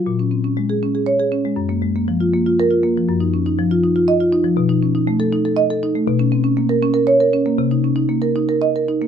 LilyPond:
\new Staff \with { instrumentName = "Marimba" } { \time 6/8 \key ees \minor \tempo 4. = 80 << { r2 des''8 r8 | r2 bes'8 r8 | r2 ees''8 r8 | \key c \phrygian r2 dis''8 r8 |
r2 des''8 r8 | r2 ees''8 r8 | } \\ { bes,16 des'16 c'16 des'16 aes16 aes'16 des'16 aes'8 aes'16 des'16 aes16 | ges,16 bes16 aes16 bes16 f16 f'16 bes16 f'8 f'16 bes16 f16 | ges,16 ees'16 des'16 ees'16 f16 f'16 ees'16 f'8 f'16 ees'16 f16 | b,16 dis'16 cis'16 dis'16 a16 a'16 dis'16 a'8 a'16 dis'16 a16 |
ces16 des'16 c'16 des'16 bes16 bes'16 des'16 bes'8 bes'16 des'16 bes16 | c16 ees'16 des'16 ees'16 bes16 bes'16 ees'16 bes'8 bes'16 ees'16 bes16 | } >> }